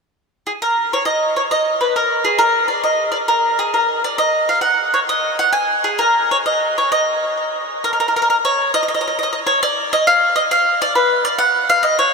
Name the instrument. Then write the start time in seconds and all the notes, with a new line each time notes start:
mandolin
0.47 G#4
0.62 A#4
0.93 C#5
1.05 D#5
1.37 C#5
1.51 D#5
1.81 B4
1.96 A#4
2.25 G#4
2.39 A#4
2.68 D5
2.84 D#5
3.12 D5
3.28 A#4
3.59 G#4
3.74 A#4
4.04 D5
4.18 D#5
4.49 F5
4.61 F#5
4.94 C#5
5.09 D#5
5.39 F#5
5.53 G#5
5.84 G#4
5.99 A#4
6.31 C#5
6.46 D#5
6.78 C#5
6.92 D#5
7.84 A#4
7.93 A#4
8.00 A#4
8.08 A#4
8.16 A#4
8.22 A#4
8.30 A#4
8.45 C#5
8.74 D#5
8.83 D#5
8.88 D#5
8.94 D#5
9.01 D#5
9.08 D#5
9.19 D#5
9.23 D#5
9.33 D#5
9.47 C#5
9.63 D5
9.93 D#5
10.07 F5
10.36 D#5
10.51 F5
10.82 D5
10.95 B4
11.25 D5
11.39 F#5
11.70 F5
11.83 D#5
11.99 C#5